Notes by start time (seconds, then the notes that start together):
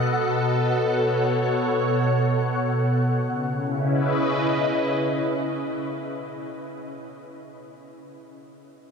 Already playing: B2 B3 A4 B4 D#5 F#5
0.39 C#5
3.22 C#3
3.31 C#4
3.40 E4
3.50 B4
3.59 D#5